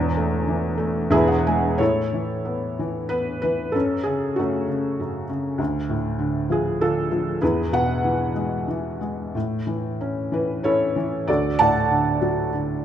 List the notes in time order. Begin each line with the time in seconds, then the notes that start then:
Already playing: E1 E2 F#4 D5
0.17 A3
0.48 E3
0.78 A3
1.10 E1 E2 B3 E4 G#4 E5
1.27 F#5
1.47 G#3 G#5
1.78 A2 E4 A4 C#5
2.13 E3
2.45 B3
2.79 E3
3.09 B3 B4
3.42 E3 B4
3.72 F#2 C#4 A4
4.04 C#3 G#4
4.36 F#2 A3 C#4 F#4
4.68 C#3
5.00 F#2
5.29 C#3
5.58 D2
5.89 A2
6.19 D3
6.50 F3 G#4
6.81 D3 D4 F4 A4
7.11 F3
7.41 E2 E4 G#4 B4
7.72 B2 B4 F#5
8.04 E3
8.35 G#3
8.68 E3
9.01 G#3
9.35 A2
9.67 E3
10.01 C#4
10.32 E3 B4
10.63 C#4 E4 A4 C#5
10.96 E3
11.28 D2 F#4 A4 D5
11.59 A2 D5 F#5 A5
11.91 D3
12.22 F#3
12.53 D3